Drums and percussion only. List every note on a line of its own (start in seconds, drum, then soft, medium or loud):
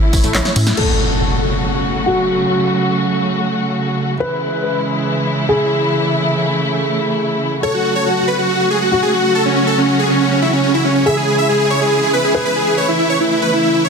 0.13 kick medium
0.13 open hi-hat loud
0.13 tambourine medium
0.24 closed hi-hat medium
0.24 tambourine soft
0.35 snare medium
0.35 clap loud
0.35 closed hi-hat medium
0.35 tambourine soft
0.45 snare medium
0.56 open hi-hat loud
0.56 tambourine medium
0.67 snare medium
0.67 closed hi-hat medium
0.67 tambourine soft
0.77 crash medium